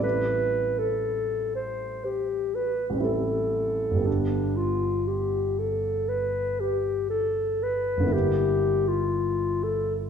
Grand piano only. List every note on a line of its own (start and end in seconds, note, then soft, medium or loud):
0.00 2.88 A1 soft
0.00 2.92 G3 soft
0.00 2.95 C4 soft
0.00 2.99 E4 soft
0.00 3.00 A4 soft
2.90 3.96 A1 soft
2.90 3.93 G3 soft
2.96 3.99 C4 soft
2.96 4.01 E4 soft
3.03 4.02 A4 soft
3.91 7.95 G1 soft
3.91 8.03 G3 soft
3.97 8.04 B3 soft
3.97 8.06 G4 soft
4.04 8.08 A4 soft
7.97 10.10 G1 soft
7.97 10.10 D3 soft
8.03 10.10 A#3 soft
8.03 10.10 E4 soft
8.10 10.10 A4 soft